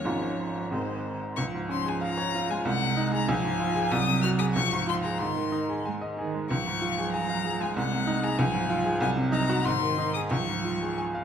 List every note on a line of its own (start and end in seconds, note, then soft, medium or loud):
0.00 0.71 C#5 medium
0.04 0.70 G#1 medium
0.04 0.70 G#2 medium
0.04 0.72 F3 medium
0.04 0.68 G#3 medium
0.04 0.68 C#4 medium
0.04 0.69 F4 medium
0.71 1.36 G#1 medium
0.71 1.36 G#2 medium
0.71 1.17 D#3 medium
0.71 1.34 G#3 soft
0.71 1.34 C4 soft
0.71 1.35 D#4 soft
0.71 1.17 C5 medium
1.36 2.62 C#2 medium
1.36 2.62 F3 medium
1.36 1.44 C#6 loud
1.54 1.80 G#2 medium
1.69 1.95 C#4 medium
1.69 1.90 C6 medium
1.86 2.12 G#4 medium
1.86 2.02 G#5 medium
2.01 2.27 F5 medium
2.01 2.52 A#5 loud
2.17 2.43 C#5 medium
2.34 2.60 F4 medium
2.50 2.66 G#3 medium
2.50 2.66 G#5 loud
2.65 3.27 C2 medium
2.65 3.30 G#3 medium
2.65 3.13 F#5 loud
2.82 3.07 C3 medium
2.97 3.22 D#4 medium
3.12 3.28 G#4 medium
3.12 3.30 A#5 loud
3.29 3.90 C#2 loud
3.29 3.93 F3 medium
3.29 3.93 G#5 loud
3.44 3.70 G#2 medium
3.60 3.85 F4 medium
3.75 3.91 G#4 medium
3.91 4.54 C2 loud
3.91 4.58 F#3 medium
3.91 4.22 D#6 loud
4.07 4.33 C3 medium
4.22 4.49 F#4 medium
4.22 4.29 F6 loud
4.39 4.55 G#4 medium
4.39 4.45 D#6 loud
4.54 5.19 C#2 medium
4.54 5.21 F3 medium
4.54 4.87 C#6 loud
4.72 4.98 G#2 medium
4.87 5.14 F4 medium
4.87 4.95 C6 loud
5.04 5.21 G#4 medium
5.04 5.21 A#5 medium
5.19 6.46 G#2 medium
5.19 5.79 D#3 medium
5.19 5.85 C6 loud
5.35 5.62 D#3 medium
5.52 5.79 D#4 medium
5.69 5.95 G#4 medium
5.85 5.94 G#3 medium
5.85 6.11 G#5 medium
6.01 6.28 D#5 medium
6.18 6.50 D#3 medium
6.18 6.44 G#4 medium
6.34 6.50 G#3 medium
6.50 7.73 C#2 medium
6.50 7.73 F3 medium
6.50 7.09 C#6 loud
6.66 6.92 G#2 medium
6.82 7.07 F4 medium
6.98 7.24 G#4 medium
7.13 7.39 G#5 medium
7.13 7.64 A#5 loud
7.29 7.55 F5 medium
7.45 7.70 G#4 medium
7.60 7.76 G#3 medium
7.60 7.76 G#5 medium
7.76 8.37 C2 medium
7.76 8.35 G#3 medium
7.76 8.26 F#5 loud
7.92 8.17 C3 medium
8.07 8.32 D#4 medium
8.23 8.39 G#4 medium
8.23 8.40 A#5 loud
8.39 9.00 C#2 medium
8.39 8.98 F3 medium
8.39 9.01 G#5 loud
8.54 8.79 G#2 medium
8.70 8.95 F4 medium
8.85 9.01 G#4 medium
9.00 9.63 C2 loud
9.00 9.62 F#3 medium
9.00 9.09 G#5 loud
9.17 9.43 C3 medium
9.32 9.59 D#4 medium
9.32 9.66 A#5 loud
9.49 9.66 F#4 medium
9.65 10.30 G#2 medium
9.65 10.28 D#3 medium
9.65 10.13 C6 loud
9.81 10.08 D#3 medium
9.98 10.25 D#4 medium
10.14 10.32 G#4 medium
10.14 10.21 D#6 loud
10.31 11.24 C#2 medium
10.31 11.24 F3 medium
10.31 10.96 C#6 loud
10.49 10.75 G#2 medium
10.65 10.91 F4 medium
10.82 11.08 G#4 medium
10.98 11.24 G#5 medium
11.15 11.24 F5 medium